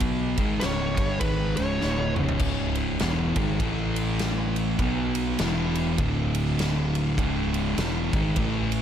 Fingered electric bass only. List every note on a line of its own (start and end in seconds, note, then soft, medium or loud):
0.00 0.34 B1 medium
0.38 0.60 G#1 medium
0.63 0.96 C#1 medium
0.98 1.20 G1 medium
1.21 1.55 G#1 medium
1.58 1.80 C#1 loud
1.82 2.15 D1 medium
2.19 2.40 C#1 medium
2.41 2.96 C#1 loud
3.00 3.34 E1 medium
3.36 3.58 G#1 loud
3.60 4.76 A1 loud
4.79 5.35 B1 loud
5.40 5.95 E1 loud
5.99 7.14 D1 loud
7.18 7.74 C#1 medium
7.78 8.11 E1 medium
8.14 8.36 G#1 loud
8.37 8.82 A1 loud